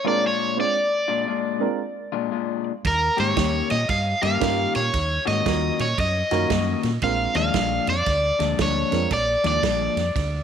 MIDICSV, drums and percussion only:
0, 0, Header, 1, 2, 480
1, 0, Start_track
1, 0, Tempo, 522102
1, 697, Time_signature, 4, 2, 24, 8
1, 9593, End_track
2, 0, Start_track
2, 0, Title_t, "Drums"
2, 2618, Note_on_c, 9, 36, 77
2, 2618, Note_on_c, 9, 51, 78
2, 2622, Note_on_c, 9, 38, 33
2, 2710, Note_off_c, 9, 36, 0
2, 2710, Note_off_c, 9, 51, 0
2, 2714, Note_off_c, 9, 38, 0
2, 2922, Note_on_c, 9, 51, 54
2, 2927, Note_on_c, 9, 38, 32
2, 3014, Note_off_c, 9, 51, 0
2, 3019, Note_off_c, 9, 38, 0
2, 3094, Note_on_c, 9, 51, 75
2, 3097, Note_on_c, 9, 36, 82
2, 3099, Note_on_c, 9, 38, 104
2, 3186, Note_off_c, 9, 51, 0
2, 3189, Note_off_c, 9, 36, 0
2, 3191, Note_off_c, 9, 38, 0
2, 3401, Note_on_c, 9, 51, 58
2, 3405, Note_on_c, 9, 38, 35
2, 3492, Note_off_c, 9, 51, 0
2, 3497, Note_off_c, 9, 38, 0
2, 3575, Note_on_c, 9, 51, 75
2, 3577, Note_on_c, 9, 36, 76
2, 3579, Note_on_c, 9, 38, 31
2, 3667, Note_off_c, 9, 51, 0
2, 3669, Note_off_c, 9, 36, 0
2, 3671, Note_off_c, 9, 38, 0
2, 3885, Note_on_c, 9, 51, 60
2, 3890, Note_on_c, 9, 38, 33
2, 3977, Note_off_c, 9, 51, 0
2, 3982, Note_off_c, 9, 38, 0
2, 4057, Note_on_c, 9, 51, 78
2, 4059, Note_on_c, 9, 36, 79
2, 4061, Note_on_c, 9, 38, 101
2, 4149, Note_off_c, 9, 51, 0
2, 4151, Note_off_c, 9, 36, 0
2, 4153, Note_off_c, 9, 38, 0
2, 4364, Note_on_c, 9, 51, 61
2, 4369, Note_on_c, 9, 38, 32
2, 4456, Note_off_c, 9, 51, 0
2, 4461, Note_off_c, 9, 38, 0
2, 4538, Note_on_c, 9, 51, 86
2, 4539, Note_on_c, 9, 36, 74
2, 4543, Note_on_c, 9, 38, 32
2, 4630, Note_off_c, 9, 51, 0
2, 4631, Note_off_c, 9, 36, 0
2, 4634, Note_off_c, 9, 38, 0
2, 4847, Note_on_c, 9, 51, 61
2, 4851, Note_on_c, 9, 38, 32
2, 4939, Note_off_c, 9, 51, 0
2, 4943, Note_off_c, 9, 38, 0
2, 5019, Note_on_c, 9, 36, 80
2, 5020, Note_on_c, 9, 51, 76
2, 5025, Note_on_c, 9, 38, 101
2, 5111, Note_off_c, 9, 36, 0
2, 5112, Note_off_c, 9, 51, 0
2, 5117, Note_off_c, 9, 38, 0
2, 5326, Note_on_c, 9, 51, 63
2, 5331, Note_on_c, 9, 38, 36
2, 5418, Note_off_c, 9, 51, 0
2, 5423, Note_off_c, 9, 38, 0
2, 5499, Note_on_c, 9, 36, 78
2, 5501, Note_on_c, 9, 51, 81
2, 5505, Note_on_c, 9, 38, 31
2, 5591, Note_off_c, 9, 36, 0
2, 5593, Note_off_c, 9, 51, 0
2, 5597, Note_off_c, 9, 38, 0
2, 5802, Note_on_c, 9, 51, 57
2, 5806, Note_on_c, 9, 38, 33
2, 5893, Note_off_c, 9, 51, 0
2, 5898, Note_off_c, 9, 38, 0
2, 5976, Note_on_c, 9, 51, 80
2, 5977, Note_on_c, 9, 36, 80
2, 5981, Note_on_c, 9, 38, 100
2, 6068, Note_off_c, 9, 51, 0
2, 6069, Note_off_c, 9, 36, 0
2, 6073, Note_off_c, 9, 38, 0
2, 6281, Note_on_c, 9, 51, 57
2, 6286, Note_on_c, 9, 38, 32
2, 6373, Note_off_c, 9, 51, 0
2, 6378, Note_off_c, 9, 38, 0
2, 6451, Note_on_c, 9, 51, 73
2, 6456, Note_on_c, 9, 38, 31
2, 6457, Note_on_c, 9, 36, 80
2, 6543, Note_off_c, 9, 51, 0
2, 6548, Note_off_c, 9, 38, 0
2, 6549, Note_off_c, 9, 36, 0
2, 6754, Note_on_c, 9, 51, 53
2, 6759, Note_on_c, 9, 38, 32
2, 6846, Note_off_c, 9, 51, 0
2, 6851, Note_off_c, 9, 38, 0
2, 6930, Note_on_c, 9, 51, 76
2, 6935, Note_on_c, 9, 36, 80
2, 6935, Note_on_c, 9, 38, 104
2, 7022, Note_off_c, 9, 51, 0
2, 7026, Note_off_c, 9, 36, 0
2, 7027, Note_off_c, 9, 38, 0
2, 7237, Note_on_c, 9, 51, 62
2, 7242, Note_on_c, 9, 38, 33
2, 7329, Note_off_c, 9, 51, 0
2, 7334, Note_off_c, 9, 38, 0
2, 7412, Note_on_c, 9, 51, 72
2, 7416, Note_on_c, 9, 36, 81
2, 7416, Note_on_c, 9, 38, 32
2, 7504, Note_off_c, 9, 51, 0
2, 7508, Note_off_c, 9, 36, 0
2, 7508, Note_off_c, 9, 38, 0
2, 7722, Note_on_c, 9, 51, 60
2, 7726, Note_on_c, 9, 38, 34
2, 7814, Note_off_c, 9, 51, 0
2, 7818, Note_off_c, 9, 38, 0
2, 7894, Note_on_c, 9, 51, 80
2, 7896, Note_on_c, 9, 36, 76
2, 7899, Note_on_c, 9, 38, 107
2, 7986, Note_off_c, 9, 51, 0
2, 7988, Note_off_c, 9, 36, 0
2, 7990, Note_off_c, 9, 38, 0
2, 8200, Note_on_c, 9, 51, 59
2, 8205, Note_on_c, 9, 38, 34
2, 8292, Note_off_c, 9, 51, 0
2, 8297, Note_off_c, 9, 38, 0
2, 8372, Note_on_c, 9, 51, 80
2, 8375, Note_on_c, 9, 36, 77
2, 8376, Note_on_c, 9, 38, 33
2, 8464, Note_off_c, 9, 51, 0
2, 8467, Note_off_c, 9, 36, 0
2, 8468, Note_off_c, 9, 38, 0
2, 8680, Note_on_c, 9, 51, 58
2, 8684, Note_on_c, 9, 38, 33
2, 8772, Note_off_c, 9, 51, 0
2, 8776, Note_off_c, 9, 38, 0
2, 8855, Note_on_c, 9, 36, 79
2, 8855, Note_on_c, 9, 51, 81
2, 8860, Note_on_c, 9, 38, 96
2, 8947, Note_off_c, 9, 36, 0
2, 8947, Note_off_c, 9, 51, 0
2, 8952, Note_off_c, 9, 38, 0
2, 9166, Note_on_c, 9, 51, 63
2, 9171, Note_on_c, 9, 38, 33
2, 9258, Note_off_c, 9, 51, 0
2, 9263, Note_off_c, 9, 38, 0
2, 9338, Note_on_c, 9, 36, 78
2, 9342, Note_on_c, 9, 51, 76
2, 9346, Note_on_c, 9, 38, 33
2, 9430, Note_off_c, 9, 36, 0
2, 9434, Note_off_c, 9, 51, 0
2, 9438, Note_off_c, 9, 38, 0
2, 9593, End_track
0, 0, End_of_file